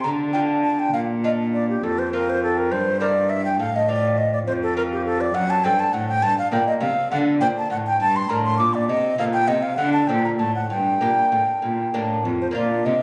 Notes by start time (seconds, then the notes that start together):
0.03 D3 A#5
0.33 D4 F4 G5
0.64 A5
0.79 G5
0.93 A#2 F5
1.24 D4 F4 D#5
1.54 D5
1.70 G4
1.83 F2 A4
1.99 C5
2.13 C4 F4 A#4
2.29 C5
2.43 A4
2.58 A#4
2.71 G2 C5
3.00 A#3 E4 A#4 D5
3.30 E5
3.45 G5
3.59 A2 F5
3.76 D#5
3.89 C4 F4 D5
4.18 D#5
4.33 D5
4.47 F2 C5
4.63 A4
4.77 C4 F4 A#4
4.92 G4
5.05 A4
5.21 D5
5.34 F#2 F#5
5.50 A5
5.64 G2 C4 D4 A4 G5
5.80 A5
5.93 A2 F#5
6.09 G5
6.22 G2 A5
6.39 F5
6.52 A#2 A#3 D4 A#4 G5
6.67 D#5
6.80 C3 F5
7.11 D3 F#5
7.40 A#2 A3 D4 C5 G5
7.58 A5
7.70 A2 F#5
7.87 G5
7.99 G2 A5
8.16 C6
8.29 A2 A#3 D4 A#4 A#5
8.45 C6
8.58 A#2 D6
8.74 D5
8.88 C3 D#5
9.18 A#2 C4 D#4 A4 F5
9.33 G5
9.48 C3 D#5
9.62 F5
9.77 D3 F#5
9.93 A5
10.08 A#2 C4 D4 A4 G5
10.24 A#5
10.39 A2 A5
10.55 F#5
10.70 G2 G5
11.00 A#2 A#3 D4 G4
11.32 A2
11.62 A#2
11.94 A2 A#3 D4 G4
12.25 F2
12.41 C5
12.51 A#2 A#3 D4 F4
12.56 A#2 D5
12.85 C3 D#5